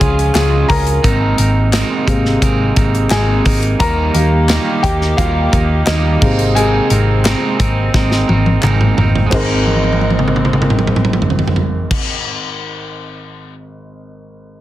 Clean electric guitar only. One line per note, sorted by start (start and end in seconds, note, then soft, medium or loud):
0.00 0.34 C#4 soft
0.00 0.34 F4 medium
0.00 0.34 G#4 medium
0.34 0.69 C#3 medium
0.34 0.69 G#3 medium
0.34 0.69 C#4 medium
0.34 0.68 F4 medium
0.34 0.67 G#4 medium
0.68 1.03 C#4 soft
0.68 1.04 F4 medium
0.68 1.03 G#4 medium
1.03 1.38 G#3 medium
1.03 1.38 C4 medium
1.03 1.38 D#4 loud
1.03 1.36 A#4 loud
1.38 1.72 C4 soft
1.38 1.72 D#4 medium
1.38 1.73 A#4 medium
1.72 2.07 G#3 medium
1.72 2.08 C4 loud
1.72 2.07 D#4 medium
1.72 2.06 A#4 loud
2.07 2.42 C4 soft
2.07 2.43 D#4 medium
2.07 2.42 A#4 medium
2.42 2.77 G#3 medium
2.42 2.77 C4 medium
2.42 2.76 D#4 medium
2.42 2.75 A#4 medium
2.76 3.11 C4 medium
2.76 3.11 D#4 medium
2.76 3.11 A#4 medium
3.11 3.46 G#3 medium
3.11 3.46 C4 medium
3.11 3.46 D#4 medium
3.11 3.44 A#4 loud
3.45 3.80 C4 soft
3.45 3.80 D#4 medium
3.45 3.80 A#4 medium
3.79 4.14 D#3 medium
3.79 4.15 G3 medium
3.79 4.15 A#3 loud
3.79 4.14 D#4 loud
3.79 4.13 A#4 loud
4.14 4.48 A#3 medium
4.14 4.48 D#4 medium
4.14 4.49 A#4 medium
4.48 4.83 D#3 medium
4.48 4.84 G3 medium
4.48 4.84 A#3 loud
4.48 4.83 D#4 medium
4.48 4.81 A#4 loud
4.83 5.17 A#3 soft
4.83 5.18 D#4 medium
4.83 5.18 A#4 medium
5.17 5.52 G3 medium
5.17 5.53 A#3 medium
5.17 5.52 D#4 medium
5.17 5.51 A#4 medium
5.52 5.86 A#3 soft
5.52 5.86 D#4 medium
5.52 5.87 A#4 medium
5.86 6.21 D#3 medium
5.86 6.22 G3 medium
5.86 6.22 A#3 medium
5.86 6.21 D#4 medium
5.86 6.20 A#4 loud
6.21 6.55 C4 soft
6.21 6.55 D#4 medium
6.21 6.56 A#4 medium
6.55 6.90 G#3 medium
6.55 6.91 C4 medium
6.55 6.90 D#4 medium
6.55 6.89 A#4 loud
6.90 7.24 C4 medium
6.90 7.25 D#4 medium
6.90 7.25 A#4 medium
7.25 7.60 G#3 medium
7.25 7.60 C4 medium
7.25 7.59 D#4 medium
7.25 7.58 A#4 loud
7.59 7.94 C4 soft
7.59 7.95 D#4 soft
7.59 7.94 A#4 medium
7.94 8.29 G#3 medium
7.94 8.29 C4 medium
7.94 8.28 D#4 medium
7.94 8.27 A#4 medium
8.28 8.62 C4 soft
8.28 8.62 D#4 medium
8.28 8.63 A#4 medium
8.62 8.97 G#3 medium
8.62 8.98 C4 medium
8.62 8.97 D#4 medium
8.62 8.96 A#4 medium
8.97 9.33 C4 soft
8.97 9.33 D#4 medium
8.97 9.32 A#4 medium
9.26 12.62 G#3 medium
9.34 12.62 C4 medium
9.40 12.62 D#4 medium
9.46 12.62 A#4 medium